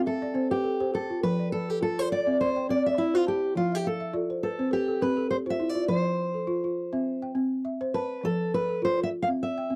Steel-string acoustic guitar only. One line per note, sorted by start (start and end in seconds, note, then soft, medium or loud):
0.07 0.51 A4 medium
0.51 0.91 G4 medium
0.95 1.23 A4 medium
1.23 1.52 B4 loud
1.52 1.70 A4 medium
1.70 1.82 G4 medium
1.82 1.99 A4 loud
1.99 2.11 C5 medium
2.12 2.38 D5 loud
2.41 2.67 C5 loud
2.70 2.86 D5 medium
2.86 2.99 E5 medium
2.98 3.15 E4 medium
3.15 3.28 F4 medium
3.28 3.55 G4 medium
3.57 3.75 F4 loud
3.75 3.86 G4 medium
3.87 4.13 A4 medium
4.43 4.73 A4 medium
4.73 5.03 G4 medium
5.02 5.30 B4 medium
5.31 5.36 C5 loud
5.50 5.69 E5 medium
5.69 5.88 D5 medium
5.88 7.31 C5 medium
7.94 8.24 B4 medium
8.25 8.51 A4 medium
8.54 8.84 B4 medium
8.85 9.02 C5 medium
9.03 9.08 E5 loud
9.22 9.28 F5 loud
9.43 9.76 E5 medium